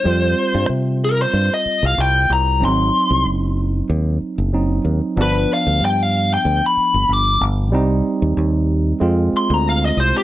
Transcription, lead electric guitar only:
X:1
M:4/4
L:1/16
Q:"Swing 16ths" 1/4=94
K:Cm
V:1 name="Lead electric guitar"
c4 z2 B c2 e2 f g2 b2 | c'4 z12 | =B2 f2 g f2 g2 =b3 d'2 z2 | z8 z2 c' b f e c G |]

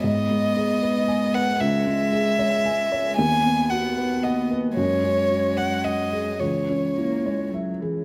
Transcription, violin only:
X:1
M:3/4
L:1/8
Q:1/4=113
K:C#m
V:1 name="Violin"
d4- d f | e6 | g2 f2 d z | c3 f d2 |
c4 z2 |]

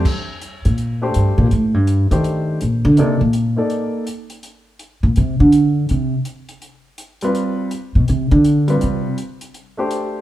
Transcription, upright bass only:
X:1
M:4/4
L:1/8
Q:"Swing" 1/4=164
K:Eblyd
V:1 name="Upright bass" clef=bass
z3 B,,3 G,, B,, | A,, G,,2 E,3 B,, D, | C, B,,2 z4 z | z3 B,, C, D,3 |
C, z6 z | z3 _C, =C, D,3 | C, z6 z |]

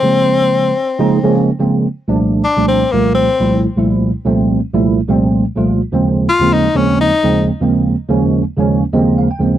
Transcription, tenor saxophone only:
X:1
M:4/4
L:1/8
Q:"Swing 16ths" 1/4=125
K:Cphr
V:1 name="Tenor saxophone"
C6 z2 | z2 =D C B, C2 z | z8 | z2 F E D E2 z |
z8 |]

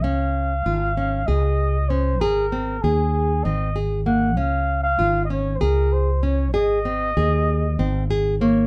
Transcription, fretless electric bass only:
X:1
M:7/8
L:1/8
Q:1/4=97
K:Db
V:1 name="Fretless electric bass" clef=bass
D,,2 A,,,2 D,,3 | A,,,2 E,,2 A,,,3 | D,,2 A,,,2 D,,3 | A,,,2 E,,2 A,,,3 |]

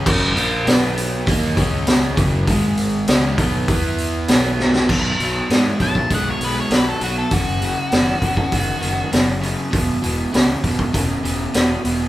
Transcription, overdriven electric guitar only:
X:1
M:4/4
L:1/8
Q:1/4=99
K:B
V:1 name="Overdriven electric guitar" clef=bass
[F,,C,F,] [A,,^E,A,] [B,,F,B,]2 [D,A,D] [C,G,C]2 [F,,C,F,] | [G,,D,G,]2 [C,G,C] [B,,F,B,] [E,B,E]2 [B,,F,B,]2 | [B,,F,] [B,,F,] [B,,G,] [B,,F,] [B,,G,] [B,,G,] [B,,F,] [B,,F,] | [F,,C,] [F,,C,] [F,,D,] [F,,C,] [F,,D,] [F,,D,] [F,,C,] [F,,C,] |
[E,,B,,] [E,,B,,] [E,,C,] [E,,B,,] [E,,C,] [E,,C,] [E,,B,,] [E,,B,,] |]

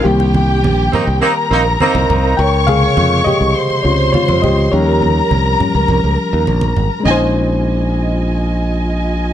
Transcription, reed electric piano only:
X:1
M:4/4
L:1/8
Q:1/4=103
K:Bbdor
V:1 name="Reed electric piano"
G6 z2 | [Bg] [Af]2 [Ge]2 [Fd] [Fd] [Ge] | [Gd]6 z2 | [A,DEc]8 |]
V:2 name="Reed electric piano" clef=bass
[E,G,B,] z6 z | z [C,D,A,]4 [D,A,C] z2 | [F,G,D]3 [F,G,D] z4 | z8 |]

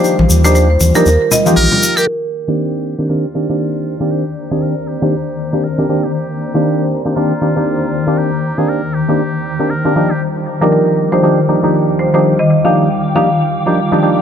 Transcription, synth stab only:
X:1
M:4/4
L:1/16
Q:"Swing 16ths" 1/4=118
K:Cm
V:1 name="Synth stab"
[F,B,DEG] z2 [F,B,DEG]2 z2 [F,B,DEG] z3 [F,B,EFG]4- [F,B,EFG] | z3 [E,B,CDG]4 [E,B,CDG] [E,B,CDG] z [E,B,CDG] [E,B,CDG]4 [E,B,CDG]- | [E,B,CDG] z2 [E,B,CDG]2 z2 [E,B,CDG] z3 [E,B,CDG] z [E,B,CDG] [E,B,CDG] z | z3 [E,B,CDG]4 [E,B,CDG] [E,B,CDG] z [E,B,CDG] [E,B,CDG]4 [E,B,CDG]- |
[E,B,CDG] z2 [E,B,CDG]2 z2 [E,B,CDG] z3 [E,B,CDG] z [E,B,CDG] [F,B,DEG] z | z3 [F,B,DEG]4 [F,B,DEG] [F,B,DEG] z [F,B,DEG] [F,B,DEG]4 [F,B,DEG]- | [F,B,DEG] z2 [F,B,DEG]2 z2 [F,B,DEG] z3 [F,B,DEG] z [F,B,DEG] [F,B,DEG] z |]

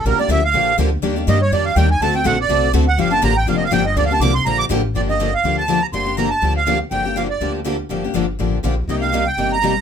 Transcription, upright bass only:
X:1
M:4/4
L:1/8
Q:"Swing" 1/4=244
K:Gm
V:1 name="Upright bass" clef=bass
B,,, z D,,2 B,,,2 D,,2 | E,,2 G,,2 F,,2 E,,2 | D,,2 B,,,2 C,,2 D,,2 | G,,,2 A,,,2 F,,,2 G,,,2 |
D,,2 C,,2 B,,,2 A,,,2 | G,,,4 D,,4 | G,,,4 D,,4 | G,,,4 D,,4 |
G,,,2 G,,,2 A,,,2 B,,,2 | C,,4 G,,,4 |]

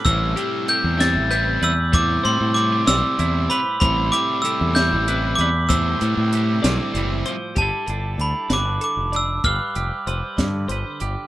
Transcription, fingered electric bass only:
X:1
M:6/8
L:1/16
Q:3/8=64
K:C
V:1 name="Fingered electric bass" clef=bass
A,,,2 z3 E,,2 A,,,3 E,,2- | E,,2 A,, A,,3 B,,, z E,,2 z2 | A,,,2 z3 E,,2 A,,,3 E,,2- | E,,2 A,, A,,3 B,,, z ^F,,,2 z2 |
G,,, z G,,,2 D,, z G,,,2 z F,,,3 | G,,, z F,,, z F,,, z G,,2 G,,, z G,,, z |]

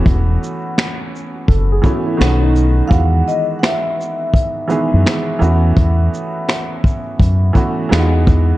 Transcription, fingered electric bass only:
X:1
M:4/4
L:1/16
Q:"Swing 16ths" 1/4=84
K:Bmix
V:1 name="Fingered electric bass" clef=bass
E,,,2 z6 F,,,2 z2 B,,,4 | E,,2 z8 z F,, z2 E,,2 | E,,2 z6 F,,2 z2 E,,4 |]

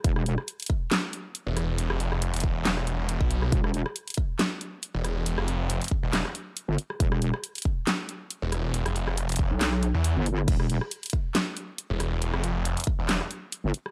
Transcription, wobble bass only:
X:1
M:4/4
L:1/16
Q:"Swing 16ths" 1/4=138
K:Ephr
V:1 name="Wobble bass" clef=bass
E,,,3 z12 z | z16 | E,,,3 z12 z | z12 z G,,, z2 |
E,,,3 z12 z | z6 z B,,,4 z2 G,,,3 | E,,,3 z12 z | z12 z G,,, z2 |]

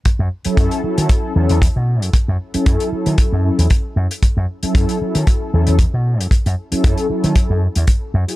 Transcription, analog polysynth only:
X:1
M:4/4
L:1/16
Q:"Swing 16ths" 1/4=115
K:F#dor
V:1 name="Analog polysynth"
z3 [F,CEA]3 [F,CEA]4 [F,CEA]2 z4 | z3 [F,CEA]3 [F,CEA]4 [F,CEA]2 z4 | z3 [F,CEA]3 [F,CEA]4 [F,CEA]2 z4 | z3 [F,CEA]3 [F,EA]4 z4 z [F,CEG] |]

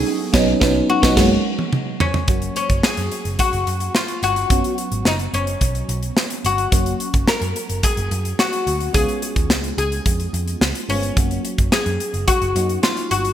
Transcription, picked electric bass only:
X:1
M:4/4
L:1/16
Q:1/4=108
K:F#
V:1 name="Picked electric bass" clef=bass
z2 B,,,2 B,,,2 z B,,, F,,,2 z6 | F,,,2 z F,,, z F,, z F,,, z F,,, F,,2 z2 =G,,,2 | F,,, z2 G,,, F,,,2 F,,,2 B,,,2 B,,,2 z2 =G,,,2 | F,,,2 z F,,, z F,, z F,,, z F,,, F,,2 z2 =D,,2 |
C,, z2 D,, C,,2 C,,2 E,,2 E,,2 C,, z =G,,,2 | F,,,2 z F,,, z F,, z F,,, z F,,, F,,2 z2 =G,,,2 |]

